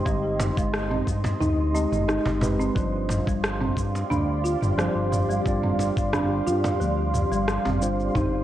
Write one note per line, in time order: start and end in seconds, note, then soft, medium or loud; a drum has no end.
0.00 1.73 G#3 medium
0.00 0.05 C4 medium
0.00 0.05 D#4 medium
0.00 0.07 G4 medium
0.00 2.78 C5 medium
0.00 2.72 D#5 medium
0.00 2.72 C6 medium
0.05 0.52 G1 loud
0.05 0.16 G3 medium
0.05 1.71 C4 medium
0.05 1.71 D#4 medium
0.05 1.72 G4 medium
0.05 1.72 D#5 loud
0.05 kick loud
0.05 shaker soft
0.40 cajon slap medium
0.40 mid tom medium
0.40 shaker medium
0.57 1.02 G1 medium
0.57 0.73 G#3 medium
0.57 kick loud
0.57 shaker soft
0.74 cross-stick loud
0.74 shaker soft
0.91 1.06 C4 medium
0.91 mid tom medium
1.07 1.35 G2 loud
1.07 kick medium
1.07 shaker medium
1.24 cajon bass medium
1.24 cajon slap medium
1.24 shaker soft
1.40 1.87 D2 medium
1.40 1.57 D#4 loud
1.40 mid tom medium
1.40 shaker soft
1.73 2.37 G#3 medium
1.73 2.38 C4 medium
1.73 1.92 C4 medium
1.73 2.38 D#4 medium
1.73 2.38 G4 medium
1.73 2.38 D#5 medium
1.73 shaker medium
1.92 2.19 G1 medium
1.92 mid tom medium
1.92 shaker soft
2.08 2.24 D#4 medium
2.08 cross-stick medium
2.08 shaker soft
2.25 2.70 G1 medium
2.25 cajon bass medium
2.40 2.71 G#3 medium
2.40 2.72 C4 medium
2.40 2.72 D#4 medium
2.40 2.72 G4 medium
2.40 2.72 B4 medium
2.40 cajon bass medium
2.40 mid tom medium
2.40 shaker medium
2.59 2.75 C4 medium
2.59 shaker soft
2.74 3.22 G1 loud
2.74 2.86 F3 medium
2.74 4.73 G3 medium
2.74 4.74 C4 medium
2.74 4.74 D4 medium
2.74 4.75 F4 medium
2.74 8.12 G4 medium
2.74 4.75 C5 medium
2.74 8.12 D5 medium
2.74 8.12 F5 medium
2.74 8.44 C6 medium
2.74 kick loud
2.74 shaker soft
3.09 cajon slap medium
3.09 mid tom medium
3.09 shaker medium
3.27 3.72 G1 medium
3.27 3.42 G3 medium
3.27 kick loud
3.27 shaker soft
3.44 cross-stick loud
3.44 shaker soft
3.61 3.76 C4 medium
3.61 mid tom medium
3.77 4.04 G2 loud
3.77 kick medium
3.77 shaker medium
3.95 cajon slap medium
3.95 shaker soft
4.10 4.57 D2 medium
4.10 4.43 D4 medium
4.10 mid tom medium
4.10 shaker soft
4.44 4.61 F4 medium
4.44 shaker medium
4.62 4.89 G1 medium
4.62 mid tom medium
4.62 shaker soft
4.77 4.88 F3 medium
4.77 5.41 G3 medium
4.77 5.42 C4 medium
4.77 5.42 D4 medium
4.77 5.42 F4 medium
4.77 5.42 C5 medium
4.77 cross-stick medium
4.77 shaker soft
4.95 5.40 G1 medium
5.12 cajon slap soft
5.12 mid tom medium
5.12 shaker medium
5.29 5.45 G3 medium
5.29 shaker soft
5.44 5.91 G1 loud
5.44 7.77 G3 medium
5.44 7.77 C4 medium
5.44 7.78 D4 medium
5.44 7.78 F4 medium
5.44 7.79 D5 loud
5.44 kick loud
5.44 shaker soft
5.63 5.79 C4 medium
5.63 mid tom medium
5.79 cajon slap medium
5.79 shaker medium
5.97 6.41 G1 medium
5.97 kick loud
5.97 shaker soft
6.13 6.45 D4 loud
6.13 cross-stick medium
6.13 mid tom medium
6.13 shaker soft
6.46 6.74 G2 loud
6.46 6.63 F4 medium
6.46 shaker medium
6.64 cajon slap medium
6.64 mid tom medium
6.64 shaker soft
6.80 7.26 D2 medium
6.80 6.90 F3 medium
6.80 shaker soft
7.14 mid tom medium
7.14 shaker medium
7.31 7.58 G1 medium
7.31 7.47 G3 medium
7.31 shaker soft
7.48 cross-stick medium
7.48 shaker soft
7.65 8.10 G1 medium
7.65 7.81 C4 medium
7.65 cajon bass medium
7.65 mid tom medium
7.80 8.11 G3 medium
7.80 8.11 C4 medium
7.80 8.11 D4 medium
7.80 8.12 F4 medium
7.80 8.12 C5 medium
7.80 shaker medium
8.00 shaker soft
8.14 8.44 G1 loud
8.14 8.44 C4 medium
8.14 8.44 D#4 medium
8.14 8.44 G4 medium
8.14 8.44 C5 medium
8.14 8.44 D#5 medium
8.14 8.44 G5 medium
8.14 kick loud
8.14 mid tom medium
8.14 shaker soft